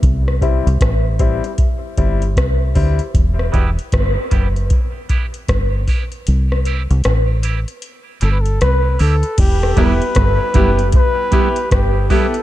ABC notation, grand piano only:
X:1
M:4/4
L:1/16
Q:"Swing 16ths" 1/4=77
K:Em
V:1 name="Grand piano"
z2 [G,CE] z3 [G,CE] [CE] z2 [G,CE] z3 [G,CE] z | z16 | z16 | z2 [B,EG] z3 [B,EG] z3 [B,EG] z3 [B,EG] z |]